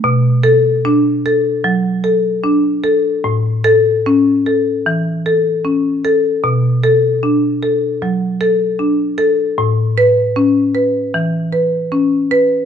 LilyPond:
\new Staff \with { instrumentName = "Marimba" } { \time 4/4 \key b \minor \tempo 4 = 76 << { r8 a'4 r2 r8 | r8 a'4 r2 r8 | r8 a'4 r2 r8 | r8 b'4 r2 r8 | } \\ { b,4 d'8 a'8 fis8 a'8 d'8 a'8 | a,4 cis'8 a'8 e8 a'8 cis'8 a'8 | b,4 d'8 a'8 fis8 a'8 d'8 a'8 | a,4 cis'8 b'8 e8 b'8 cis'8 b'8 | } >> }